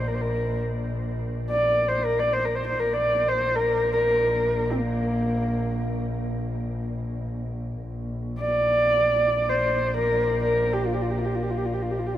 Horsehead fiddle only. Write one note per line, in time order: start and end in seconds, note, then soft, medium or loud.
0.07 0.16 A#4 medium
0.15 0.23 C5 medium
0.21 0.59 A#4 medium
1.50 1.90 D5 medium
1.88 2.06 C5 medium
2.05 2.21 A#4 medium
2.19 2.34 D5 medium
2.33 2.46 C5 medium
2.45 2.56 A#4 medium
2.55 2.64 C5 medium
2.67 2.81 C5 medium
2.80 2.95 A#4 medium
2.93 3.30 D5 medium
3.28 3.57 C5 medium
3.55 3.92 A#4 medium
3.93 4.73 A#4 medium
4.71 4.79 C4 soft
4.77 6.04 A#3 medium
8.40 9.50 D5 medium
9.49 9.96 C5 medium
9.97 10.40 A#4 medium
10.43 10.74 A#4 medium
10.73 10.87 G4 medium
10.86 10.95 F4 medium
10.93 11.03 G4 medium
11.02 11.11 F4 medium
11.10 11.19 G4 medium
11.18 11.26 F4 medium
11.25 11.36 G4 medium
11.35 11.44 F4 soft
11.43 11.51 G4 medium
11.50 11.59 F4 medium
11.57 11.66 G4 medium
11.65 11.75 F4 medium
11.73 11.83 G4 medium
11.82 11.92 F4 medium
11.91 12.00 G4 medium
11.98 12.08 F4 medium
12.06 12.15 G4 medium
12.14 12.18 F4 medium